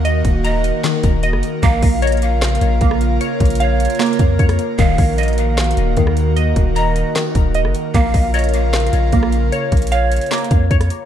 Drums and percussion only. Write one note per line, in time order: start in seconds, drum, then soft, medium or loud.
0.05 closed hi-hat medium
0.25 kick loud
0.25 closed hi-hat medium
0.45 closed hi-hat medium
0.64 closed hi-hat medium
0.84 snare loud
0.84 clap loud
0.84 closed hi-hat medium
1.03 kick loud
1.03 closed hi-hat medium
1.23 closed hi-hat medium
1.33 cross-stick medium
1.43 closed hi-hat medium
1.63 kick loud
1.63 closed hi-hat medium
1.82 kick loud
1.82 open hi-hat medium
2.02 closed hi-hat medium
2.07 closed hi-hat medium
2.12 closed hi-hat medium
2.17 closed hi-hat soft
2.22 closed hi-hat medium
2.42 snare loud
2.42 clap loud
2.42 closed hi-hat soft
2.48 closed hi-hat medium
2.55 closed hi-hat medium
2.61 closed hi-hat medium
2.81 kick loud
2.81 closed hi-hat medium
2.91 cross-stick loud
3.01 closed hi-hat medium
3.21 closed hi-hat medium
3.40 kick loud
3.40 closed hi-hat soft
3.40 open hi-hat medium
3.45 closed hi-hat medium
3.50 closed hi-hat medium
3.55 closed hi-hat medium
3.60 closed hi-hat medium
3.80 closed hi-hat medium
3.85 closed hi-hat medium
3.90 closed hi-hat medium
3.95 closed hi-hat soft
4.00 snare loud
4.00 clap loud
4.00 closed hi-hat soft
4.06 closed hi-hat medium
4.13 closed hi-hat medium
4.19 kick loud
4.19 closed hi-hat medium
4.39 kick loud
4.39 closed hi-hat medium
4.49 cross-stick medium
4.49 closed hi-hat medium
4.59 closed hi-hat medium
4.79 kick loud
4.79 closed hi-hat medium
4.98 kick loud
4.98 open hi-hat medium
5.18 closed hi-hat medium
5.23 closed hi-hat medium
5.28 closed hi-hat medium
5.33 closed hi-hat soft
5.38 closed hi-hat medium
5.58 snare loud
5.58 clap loud
5.58 closed hi-hat soft
5.64 closed hi-hat medium
5.71 closed hi-hat medium
5.77 closed hi-hat medium
5.97 kick loud
5.97 closed hi-hat medium
6.07 cross-stick loud
6.17 closed hi-hat medium
6.37 closed hi-hat medium
6.56 kick loud
6.56 closed hi-hat medium
6.76 closed hi-hat medium
6.96 closed hi-hat medium
7.16 snare loud
7.16 clap loud
7.16 closed hi-hat medium
7.35 kick loud
7.35 closed hi-hat medium
7.55 closed hi-hat medium
7.65 cross-stick medium
7.75 closed hi-hat medium
7.94 kick loud
7.94 closed hi-hat medium
8.14 kick loud
8.14 open hi-hat medium
8.34 closed hi-hat medium
8.39 closed hi-hat medium
8.44 closed hi-hat medium
8.49 closed hi-hat soft
8.54 closed hi-hat medium
8.73 snare loud
8.73 clap loud
8.73 closed hi-hat soft
8.80 closed hi-hat medium
8.87 closed hi-hat medium
8.93 closed hi-hat medium
9.12 kick loud
9.12 closed hi-hat medium
9.23 cross-stick loud
9.32 closed hi-hat medium
9.52 closed hi-hat medium
9.72 kick loud
9.72 closed hi-hat medium
9.72 open hi-hat medium
9.77 closed hi-hat medium
9.82 closed hi-hat medium
9.87 closed hi-hat medium
9.92 closed hi-hat medium
10.12 closed hi-hat medium
10.16 closed hi-hat medium
10.21 closed hi-hat medium
10.26 closed hi-hat soft
10.31 snare loud
10.31 clap loud
10.31 closed hi-hat soft
10.38 closed hi-hat medium
10.44 closed hi-hat medium
10.51 kick loud
10.51 closed hi-hat medium
10.71 kick loud
10.71 closed hi-hat medium
10.81 cross-stick medium
10.81 closed hi-hat medium
10.90 closed hi-hat medium